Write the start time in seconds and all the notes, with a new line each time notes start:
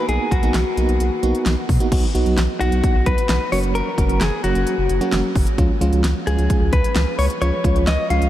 0.09 B1 A#3 B3 D#4 F#4 G#4, closed hi-hat
0.31 B1 F#4, kick, closed hi-hat
0.43 B1 A#3 B3 D#4 F#4, closed hi-hat
0.54 B1, snare, clap, closed hi-hat
0.77 B1 A#3 B3 D#4 F#4, closed hi-hat
0.89 B1, closed hi-hat
1.00 B1, closed hi-hat
1.23 B1 A#3 B3 D#4 F#4, closed hi-hat
1.35 closed hi-hat
1.46 B1, snare, clap, closed hi-hat
1.69 B2, kick, open hi-hat
1.80 A#3 B3 D#4 F#4, closed hi-hat
1.92 B1 F#3 B3 D#4 F#4, kick, closed hi-hat, crash
2.15 B1 F#3 B3 D#4 F#4, closed hi-hat
2.26 B1, closed hi-hat
2.38 B1, snare, clap, closed hi-hat
2.60 B1 F#3 B3 D#4 F#4, closed hi-hat
2.72 B1, closed hi-hat
2.84 kick, closed hi-hat
2.95 B1
3.06 B1 B4, kick, closed hi-hat
3.18 closed hi-hat
3.29 B1, snare, clap, closed hi-hat
3.52 F#1 F#3 A#3 C#4 F#4 C#5, open hi-hat
3.64 closed hi-hat
3.75 A#4, closed hi-hat
3.98 F#1 F#3 A#3 C#4 F#4, kick, closed hi-hat
4.09 F#1, closed hi-hat
4.21 F#1 G#4, snare, clap, closed hi-hat
4.44 F#1 F#3 A#3 C#4 F#4, closed hi-hat
4.55 F#1, closed hi-hat
4.67 closed hi-hat
4.78 F#1
4.89 F#1, closed hi-hat
5.01 F#3 A#3 C#4 F#4, closed hi-hat
5.12 F#1, snare, clap, closed hi-hat
5.36 F#1, kick, open hi-hat
5.47 closed hi-hat
5.58 C#2 F3 G#3 C#4 F4, kick, closed hi-hat
5.81 C#2 F3 G#3 C#4 F4, closed hi-hat
5.93 C#2, closed hi-hat
6.04 C#2, snare, clap, closed hi-hat
6.27 C#2 F3 G#3 C#4 F4 G#4, closed hi-hat
6.38 C#2, closed hi-hat
6.50 kick, closed hi-hat
6.61 C#2
6.73 C#2 B4, kick, closed hi-hat
6.84 closed hi-hat
6.96 C#2, snare, clap, closed hi-hat
7.19 C#2 C#5, open hi-hat
7.30 closed hi-hat
7.42 C#2 F3 G#3 C#4 F4 C#5, closed hi-hat
7.64 C#2 F3 G#3 C#4 F4, kick, closed hi-hat
7.76 C#2, closed hi-hat
7.87 C#2 D#5, snare, clap, closed hi-hat
8.10 C#2 F3 G#3 C#4 F4 F5, closed hi-hat
8.22 C#2, closed hi-hat